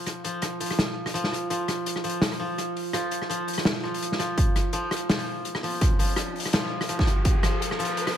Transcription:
Already playing: F3 C4 F4
0.06 cross-stick, closed hi-hat
0.24 F3, closed hi-hat
0.42 cross-stick, closed hi-hat
0.60 F3, closed hi-hat
0.66 closed hi-hat
0.70 cross-stick, open hi-hat
0.79 snare, closed hi-hat
1.06 cross-stick, open hi-hat
1.14 F3, closed hi-hat
1.24 snare
1.32 cross-stick, closed hi-hat
1.50 F3, closed hi-hat
1.68 cross-stick, closed hi-hat
1.86 closed hi-hat
1.96 cross-stick
2.04 F3, closed hi-hat
2.09 closed hi-hat
2.22 snare, closed hi-hat
2.32 cross-stick, open hi-hat
2.40 F3
2.58 cross-stick, closed hi-hat
2.77 open hi-hat
2.93 F3, cross-stick, closed hi-hat
3.11 closed hi-hat
3.22 cross-stick
3.30 F3, closed hi-hat
3.48 closed hi-hat
3.53 closed hi-hat
3.58 cross-stick, open hi-hat
3.65 snare, closed hi-hat
3.83 F3, cross-stick
3.94 open hi-hat
4.02 closed hi-hat
4.12 snare
4.19 F3, cross-stick, closed hi-hat
4.38 kick, closed hi-hat, riser
4.56 cross-stick, closed hi-hat
4.73 F3, closed hi-hat
4.91 cross-stick, closed hi-hat
4.96 closed hi-hat
5.09 F3, snare, closed hi-hat
5.19 cross-stick, open hi-hat
5.45 closed hi-hat
5.55 cross-stick
5.63 F3, open hi-hat
5.81 kick, cross-stick, closed hi-hat
5.99 F3, closed hi-hat
6.02 closed hi-hat
6.05 closed hi-hat
6.07 closed hi-hat
6.09 closed hi-hat
6.11 closed hi-hat
6.13 closed hi-hat
6.15 cross-stick, closed hi-hat
6.36 closed hi-hat
6.38 closed hi-hat
6.40 closed hi-hat
6.43 cross-stick, closed hi-hat, open hi-hat
6.53 F3, snare, closed hi-hat
6.81 cross-stick, open hi-hat
6.89 F3, closed hi-hat
6.99 kick, snare
7.07 cross-stick, closed hi-hat
7.25 kick, closed hi-hat
7.43 F3, cross-stick, closed hi-hat
7.62 closed hi-hat
7.71 cross-stick
7.79 F3, closed hi-hat
7.85 closed hi-hat
7.97 closed hi-hat
8.07 cross-stick, open hi-hat

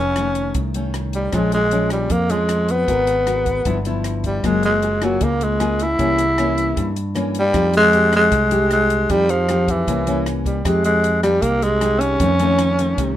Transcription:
Already playing: F1 F2 C#4
0.16 D#3 A3 C#4, cross-stick, closed hi-hat
0.35 closed hi-hat
0.55 C2, kick, closed hi-hat
0.74 D#3 A3 C#4, closed hi-hat
0.94 cross-stick, closed hi-hat
1.13 G3, closed hi-hat
1.32 A#1 A#2 F3 G#3 C#4, kick, cross-stick, closed hi-hat
1.52 G#3, closed hi-hat
1.71 F3 G#3 C#4, closed hi-hat
1.90 G3, cross-stick, closed hi-hat
2.10 F2 A#3, kick, closed hi-hat
2.30 F3 G#3 C#4, closed hi-hat
2.49 cross-stick, closed hi-hat
2.68 B3, closed hi-hat
2.88 G#1 G#3 B3 F#4 A#4, kick, closed hi-hat
3.07 closed hi-hat
3.26 B3 F#4 A#4, cross-stick, closed hi-hat
3.46 kick, closed hi-hat
3.65 G1 G2 F3 B3 E4, kick, closed hi-hat
3.85 F3 B3 E4, closed hi-hat
4.04 cross-stick, closed hi-hat
4.24 G3, kick, closed hi-hat
4.44 F#1 F#3 G#3 A#3 F4 G#4, kick, cross-stick, closed hi-hat
4.63 G#3, closed hi-hat
4.82 A#3 F4 G#4, closed hi-hat
5.02 F#3 A#3 F4 G#4, cross-stick, closed hi-hat
5.21 C#2 C#3 A#3, kick, closed hi-hat
5.41 G#3, closed hi-hat
5.60 A#3 F4 G#4, cross-stick, closed hi-hat
5.79 E4, closed hi-hat
5.99 C2 C3 E3 A#3 C#4, kick, closed hi-hat
6.18 closed hi-hat
6.38 E3 A#3 C#4, cross-stick, closed hi-hat
6.58 closed hi-hat
6.77 G2, kick, closed hi-hat
6.96 closed hi-hat
7.15 E3 A#3 C#4, cross-stick, closed hi-hat
7.35 closed hi-hat
7.39 G3
7.53 F2 F3 G#3 D#4 G4, kick, cross-stick, closed hi-hat
7.73 G#3, closed hi-hat
7.93 G#3 D#4 G4, closed hi-hat
8.13 G#3, cross-stick, closed hi-hat
8.32 C2 C3, kick, closed hi-hat
8.51 G#3 D#4 G4, closed hi-hat
8.71 G#3, cross-stick, closed hi-hat
8.90 closed hi-hat
9.10 F2 F3 G3 G#3 D#4 G4, kick, closed hi-hat
9.29 F3, closed hi-hat
9.49 G#3 D#4 G4, cross-stick, closed hi-hat
9.68 E3, kick, closed hi-hat
9.87 C2 C3 E3 A#3 C#4, kick, closed hi-hat
10.07 E3 A#3 C#4, closed hi-hat
10.26 cross-stick, closed hi-hat
10.46 G3, kick, closed hi-hat
10.65 F2 F3 G#3 D#4 G4, kick, cross-stick, closed hi-hat
10.84 G#3, closed hi-hat
11.04 closed hi-hat
11.23 G3 G#3 D#4 G4, cross-stick, closed hi-hat
11.42 C2 C3 A#3, kick, closed hi-hat
11.62 G#3, closed hi-hat
11.81 G#3 D#4 G4, cross-stick, closed hi-hat
12.00 C#4, closed hi-hat
12.19 F2 D#3 A3 C#4, kick, closed hi-hat
12.39 D#3 A3 C#4, closed hi-hat
12.58 cross-stick, closed hi-hat
12.79 D#3 A3, closed hi-hat
12.98 C2 C3, kick, closed hi-hat

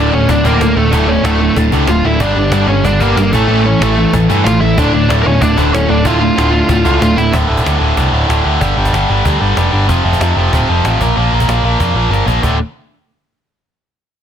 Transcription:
Already playing: D2 A2 D3 D5
0.12 D1 D2 A2 D3 C#4 C#5
0.28 D1 D2 A2 D3 D4 D5, cajon bass
0.44 D1 D2 A2 D3 A#3 A#4, cajon bass
0.60 D1 D2 A2 D3, cajon slap
0.76 D1 D2 A2 D3 A3 A4
0.92 D1 D2 A2 D3, cajon bass
1.08 D2 A2 D3 C#4 C#5
1.24 D1 D2 A2 D3 A3 A4, cajon slap
1.40 D2 A2 D3
1.56 D1 D2 A2 D3, cajon bass
1.72 C#2 D2 A2 D3, cajon bass
1.87 D1 D2 A2 D3 F4 F5, cajon slap
2.04 D1 D2 A2 D3 E4 E5
2.20 G1 G2 D3 G3 D4 D5, cajon bass
2.36 G1 G2 D3 G3
2.52 G1 G2 D3 G3, cajon slap
2.68 G1 G2 D3 G3 C#4 C#5
2.85 G1 G2 D3 G3 D4 D5, cajon bass
3.00 G1 G2 D3 G3 A#3 A#4, cajon bass
3.16 G1 G2 D3 G3 A#3 A#4, cajon slap
3.33 A1 A2 E3 A3 A4, cajon bass
3.48 A1 A2 E3 A3
3.65 A2 E3 A3 C#4 C#5
3.81 A1 A2 E3 A3 A4, cajon slap
3.97 A2 E3 A3
4.12 A1 A2 E3 A3, cajon bass
4.29 G2 A2 E3 A3, cajon bass
4.45 A1 A2 E3 A3 F4 F5, cajon slap
4.61 A1 A2 E3 A3 E4 E5
4.78 D1 D2 A2 D3 D4 D5, cajon bass
4.93 D1 D2 A2 D3
5.09 D1 D2 A2 D3, cajon slap
5.22 D1 D2 A2 D3 A#4
5.27 C#4 C#5
5.41 D1 D2 A2 D3 D4 D5, cajon bass
5.57 D1 D2 A2 D3, cajon bass
5.73 D1 D2 A2 D3 C#4 C#5, cajon slap
5.88 D1 D2 A2 D3 D4 D5
6.05 D1 D2 A2 D3 F4 F5, cajon bass
6.20 D2 A2 D3
6.37 D1 D2 A2 D3, cajon slap
6.53 D2 A2 D3
6.69 D1 D2 A2 D3, cajon bass
6.85 C#2 D2 A2 D3, cajon bass
7.01 D1 D2 A2 D3 F4 F5, cajon slap
7.16 D1 D2 A2 D3 E4 E5, cajon slap
7.32 D1 D2 A2 D3, cajon bass
7.48 D1 D2 A2 D3
7.57 cajon bass
7.63 D2 A2 D3, cajon slap
7.79 D1 D2 A2 D3
7.95 C2 D2 A2 D3, cajon bass
8.11 D1 D2 A2 D3
8.27 D1 D2 A2 D3, cajon slap
8.44 D2 A2 D3
8.60 G1 G2 D3 G3, cajon bass
8.77 G1 G2 D3 G3
8.85 cajon bass
8.93 G1 G2 D3 G3, cajon slap
9.09 G1 G2 D3 G3
9.24 D2 G2 D3 G3, cajon bass
9.40 G1 G2 D3 G3
9.56 F1 G2 D3 G3, cajon slap
9.72 G1 G2 D3 G3
9.88 F1 F2 C3 F3, cajon bass
10.04 F1 F2 C3 F3
10.13 cajon bass
10.20 F2 C3 F3, cajon slap
10.36 F1 F2 C3 F3
10.53 D1 F2 C3 F3, cajon bass
10.69 F1 F2 C3 F3
10.84 A1 F2 C3 F3, cajon slap
11.01 A#1 A#2 F3 A#3, cajon bass
11.17 A#1 A#2 F3 A#3
11.32 A#1 A#2 F3 A#3
11.40 cajon bass
11.48 A#1 A#2 F3 A#3, cajon slap
11.63 A#1 A#2 F3 A#3
11.79 F2 A#2 F3 A#3, cajon bass
11.94 A#1 A#2 F3 A#3
12.09 G1 A#2 F3 A#3
12.13 cajon slap
12.26 A#1 A#2 F3 A#3, cajon bass
12.42 D1 D2 A2 D3, cajon bass

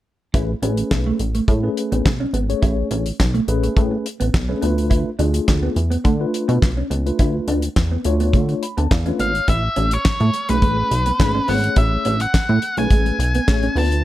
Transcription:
0.34 A1 A3 C#4 E4 G#4 B4, kick, closed hi-hat
0.62 A1 A3 C4 C#4 G#4 B4, closed hi-hat
0.69 C#4
0.77 muted clean electric guitar stroke, closed hi-hat
0.91 B1, kick, snare, clap
1.07 A3
1.19 A1, muted clean electric guitar stroke, closed hi-hat
1.35 A3, closed hi-hat
1.48 A2 G#3, kick, closed hi-hat
1.63 A3 C#4 G#4 B4, muted clean electric guitar stroke
1.77 closed hi-hat
1.92 A1 B3, closed hi-hat
2.05 B1, muted clean electric guitar stroke, kick, snare, clap
2.20 C#4
2.33 G#1 B3, closed hi-hat
2.49 A3 C#4 G#4 C#5, closed hi-hat
2.62 A1 E4, kick, closed hi-hat
2.91 A1 C#4, closed hi-hat
3.06 muted clean electric guitar stroke, closed hi-hat
3.20 B1, kick, snare, clap
3.34 A3, closed hi-hat
3.48 A1 A3 C#4 G#4 B4, muted clean electric guitar stroke, closed hi-hat
3.63 A3, closed hi-hat
3.76 A2 G#3, kick, closed hi-hat
3.91 muted clean electric guitar stroke
4.06 closed hi-hat
4.20 A1 B3, closed hi-hat
4.34 B1, muted clean electric guitar stroke, kick, snare, clap
4.49 A3 C#4 G#4 B4
4.62 D2 A3 B3 D4 F4 B4, closed hi-hat
4.78 closed hi-hat
4.90 E4, kick, closed hi-hat
5.19 D2 A3 D4 F4 G#4, closed hi-hat
5.34 muted clean electric guitar stroke, closed hi-hat
5.48 D2, kick, snare, clap
5.63 B3
5.76 E2, muted clean electric guitar stroke, closed hi-hat
5.90 B3, closed hi-hat
6.04 D3 A3, kick, closed hi-hat
6.20 A3 D4 F4 B4, muted clean electric guitar stroke
6.34 closed hi-hat
6.48 B2 B3, closed hi-hat
6.62 B1, muted clean electric guitar stroke, kick, snare, clap
6.77 C#4
6.90 C#2 B3, closed hi-hat
7.06 A3 D4 F4 B4, closed hi-hat
7.19 D2 E4, kick, closed hi-hat
7.48 D2 D4, closed hi-hat
7.62 muted clean electric guitar stroke, closed hi-hat
7.76 E2, kick, snare, clap
7.92 B3
8.05 D2 A3 D4 F4 C#5, muted clean electric guitar stroke, closed hi-hat
8.20 B3, closed hi-hat
8.33 D3 A3, kick, closed hi-hat
8.49 muted clean electric guitar stroke, closed hi-hat
8.63 B5, closed hi-hat
8.77 D2 B3 A5, closed hi-hat
8.91 E2 F5, kick, snare, clap
9.06 A3 C#4 D4 F4 B4, closed hi-hat
9.19 G#1 B3 C#5 F5, closed hi-hat
9.35 closed hi-hat
9.48 A1 E4 E5, kick, closed hi-hat
9.76 A1 C#4, closed hi-hat
9.91 C#5, muted clean electric guitar stroke, closed hi-hat
10.05 A2, kick, snare, clap, closed hi-hat
10.20 A2 A3, closed hi-hat
10.34 muted clean electric guitar stroke, closed hi-hat
10.49 B1 A3 C#4 G#4 B4, closed hi-hat
10.62 A1 G#3, kick, closed hi-hat
10.78 muted clean electric guitar stroke
10.91 B1, closed hi-hat
11.06 B3, closed hi-hat
11.20 G#1 A3 C#4 G#4 B4, muted clean electric guitar stroke, kick, snare, clap, closed hi-hat
11.35 C#4
11.48 G#1 A3 B3 C#4 G#4 C5 F#5, open hi-hat
11.55 C#5
11.64 closed hi-hat
11.76 A1 E4 E5, kick, closed hi-hat
12.05 A1 C#4, closed hi-hat
12.20 F#5, muted clean electric guitar stroke, closed hi-hat
12.34 A2, kick, snare, clap, closed hi-hat
12.49 A2 A3
12.62 muted clean electric guitar stroke, closed hi-hat
12.77 B1 A3 C#4 G#4 B4 G#5, closed hi-hat
12.90 A1 G#3, kick, closed hi-hat
13.06 muted clean electric guitar stroke, closed hi-hat
13.19 B1, closed hi-hat
13.35 B3, closed hi-hat
13.48 A1 A3 C#4 G#4 C#5, kick, snare, clap, closed hi-hat
13.63 C#4, closed hi-hat
13.76 D2 A3 B3 D4 F4 B4 A5, open hi-hat
13.92 closed hi-hat

